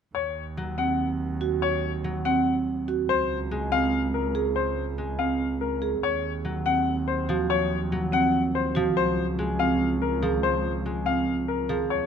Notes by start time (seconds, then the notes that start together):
0.15 D#2 C#5
0.57 F#3
0.78 C4 F#5
1.41 F#4
1.62 C#5
2.04 F#3
2.25 C4 F#5
2.88 F#4
3.09 C#2 C5
3.51 G#3
3.72 C4 F5
4.14 A#4
4.35 G#4
4.56 C5
4.98 G#3
5.19 C4 F5
5.61 A#4
5.82 G#4
6.03 D#2 C#5
6.45 F#3
6.66 C4 F#5
7.08 C5
7.29 F3 F#4
7.50 C#5
7.92 F#3
8.13 C4 F#5
8.55 C5
8.75 F3 F#4
8.96 C#2 C5
9.39 G#3
9.59 C4 F5
10.02 A#4
10.22 F3 G#4
10.43 C5
10.86 G#3
11.06 C4 F5
11.48 A#4
11.69 F3 G#4
11.90 D#2 C#5